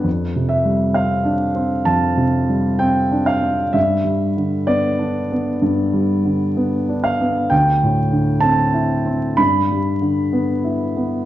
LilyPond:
<<
  \new Staff \with { instrumentName = "Grand piano" } { \time 4/4 \key g \mixolydian \tempo 4 = 64 r8 e''8 f''4 a''4 g''8 f''8 | e''4 d''2~ d''8 f''8 | g''4 a''4 b''2 | }
  \new Staff \with { instrumentName = "Grand piano" } { \time 4/4 \key g \mixolydian \tuplet 3/2 { f,8 c8 g8 c'8 d'8 c'8 f,8 c8 g8 c'8 d'8 c'8 } | \tuplet 3/2 { g,8 g8 d8 b8 d'8 b8 g,8 g8 d8 b8 d'8 b8 } | \tuplet 3/2 { d,8 a,8 d8 c'8 e'8 c'8 g,8 g8 d8 b8 e'8 b8 } | }
>>